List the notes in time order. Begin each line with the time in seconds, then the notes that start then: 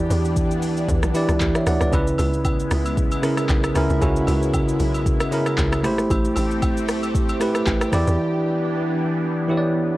Already playing: E3 B3 D4 E4 G4 D5
0.10 E2, open hi-hat, shaker
0.25 shaker
0.36 kick, shaker
0.51 shaker
0.62 D2, open hi-hat, shaker
0.77 shaker
0.89 E2, kick, shaker
1.03 B1, cross-stick, shaker
1.14 E3 E4 G4 D5, open hi-hat, shaker
1.29 C#2, cross-stick, shaker
1.40 D2, kick, clap, shaker
1.55 C#5 E5, cross-stick, shaker
1.67 D2 D5 F#5, cross-stick, open hi-hat, shaker
1.81 C#2 B4 D5, cross-stick, shaker
1.92 C#2 C#3 G#3 B3 C#4 E4 B4, kick, high agogo, shaker
2.07 shaker
2.18 C#2, open hi-hat, high agogo, shaker
2.34 shaker
2.45 kick, high agogo, low woodblock, shaker
2.60 shaker
2.71 C#2, cross-stick, open hi-hat, shaker
2.86 high agogo, shaker
2.97 kick, shaker
3.11 high agogo, shaker
3.22 C#3 C#4 E4 A#4, cross-stick, open hi-hat, shaker
3.37 cross-stick, high agogo, shaker
3.49 B1, kick, clap, low woodblock, shaker
3.64 cross-stick, high agogo, shaker
3.74 C#2 C#3 C#4 E4 A#4, cross-stick, open hi-hat, shaker
3.90 C#2, shaker
4.00 C#2 C#3 C#4 E4 F#4, kick, high agogo, shaker
4.16 shaker
4.27 C#2, open hi-hat, high agogo, shaker
4.42 shaker
4.54 kick, high agogo, low woodblock, shaker
4.68 shaker
4.80 B1, open hi-hat, shaker
4.94 high agogo, shaker
5.06 kick, shaker
5.20 cross-stick, high agogo, shaker
5.31 C#3 C#4 E4 A#4, open hi-hat, shaker
5.46 cross-stick, high agogo, shaker
5.58 C#2, kick, clap, low woodblock, shaker
5.72 cross-stick, high agogo, shaker
5.83 A1 A3 C4 E4 G4 C5, cross-stick, open hi-hat, shaker
5.98 cross-stick, shaker
6.10 A1, kick, high agogo, shaker
6.25 shaker
6.36 A1, open hi-hat, high agogo, shaker
6.51 shaker
6.62 kick, high agogo, low woodblock, shaker
6.77 shaker
6.88 B1, cross-stick, open hi-hat, shaker
7.03 high agogo, shaker
7.15 kick, shaker
7.29 high agogo, shaker
7.40 A3 E4 G4 B4, cross-stick, open hi-hat, shaker
7.55 cross-stick, high agogo, shaker
7.67 A1, kick, clap, low woodblock, shaker
7.81 cross-stick, high agogo, shaker
7.92 E2 E3 B3 D4 E4 G4 D5, cross-stick, open hi-hat, shaker
8.07 E2, shaker
9.48 E3 E4 G4 C#5
9.57 D5